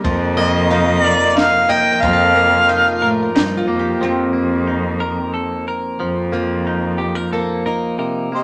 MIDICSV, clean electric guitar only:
0, 0, Header, 1, 2, 480
1, 0, Start_track
1, 0, Tempo, 661521
1, 34, Time_signature, 3, 2, 24, 8
1, 6121, End_track
2, 0, Start_track
2, 0, Title_t, "Clean electric guitar"
2, 0, Program_c, 0, 27
2, 0, Note_on_c, 0, 58, 61
2, 31, Note_on_c, 0, 53, 75
2, 271, Note_off_c, 0, 58, 0
2, 274, Note_on_c, 0, 58, 64
2, 521, Note_on_c, 0, 63, 61
2, 757, Note_on_c, 0, 70, 64
2, 989, Note_off_c, 0, 63, 0
2, 992, Note_on_c, 0, 63, 57
2, 1222, Note_off_c, 0, 58, 0
2, 1225, Note_on_c, 0, 58, 66
2, 1467, Note_off_c, 0, 53, 0
2, 1470, Note_on_c, 0, 53, 74
2, 1491, Note_off_c, 0, 63, 0
2, 1695, Note_off_c, 0, 58, 0
2, 1704, Note_on_c, 0, 58, 55
2, 1949, Note_on_c, 0, 63, 60
2, 2188, Note_off_c, 0, 70, 0
2, 2191, Note_on_c, 0, 70, 66
2, 2424, Note_off_c, 0, 63, 0
2, 2433, Note_on_c, 0, 63, 63
2, 2659, Note_off_c, 0, 58, 0
2, 2668, Note_on_c, 0, 58, 63
2, 2884, Note_off_c, 0, 63, 0
2, 2884, Note_off_c, 0, 70, 0
2, 2900, Note_off_c, 0, 53, 0
2, 2909, Note_on_c, 0, 53, 59
2, 3134, Note_off_c, 0, 58, 0
2, 3143, Note_on_c, 0, 58, 50
2, 3390, Note_on_c, 0, 63, 48
2, 3630, Note_on_c, 0, 70, 62
2, 3869, Note_off_c, 0, 70, 0
2, 3872, Note_on_c, 0, 69, 50
2, 4111, Note_off_c, 0, 69, 0
2, 4120, Note_on_c, 0, 70, 56
2, 4344, Note_off_c, 0, 53, 0
2, 4352, Note_on_c, 0, 53, 63
2, 4374, Note_off_c, 0, 63, 0
2, 4579, Note_off_c, 0, 58, 0
2, 4588, Note_on_c, 0, 58, 50
2, 4838, Note_on_c, 0, 63, 52
2, 5063, Note_off_c, 0, 70, 0
2, 5066, Note_on_c, 0, 67, 54
2, 5190, Note_off_c, 0, 67, 0
2, 5190, Note_on_c, 0, 70, 46
2, 5309, Note_off_c, 0, 70, 0
2, 5315, Note_on_c, 0, 69, 48
2, 5552, Note_off_c, 0, 69, 0
2, 5557, Note_on_c, 0, 70, 54
2, 5765, Note_off_c, 0, 63, 0
2, 5765, Note_off_c, 0, 70, 0
2, 5791, Note_off_c, 0, 53, 0
2, 5793, Note_on_c, 0, 48, 48
2, 5797, Note_on_c, 0, 70, 44
2, 6030, Note_off_c, 0, 58, 0
2, 6038, Note_on_c, 0, 58, 35
2, 6121, Note_off_c, 0, 48, 0
2, 6121, Note_off_c, 0, 58, 0
2, 6121, Note_off_c, 0, 70, 0
2, 6121, End_track
0, 0, End_of_file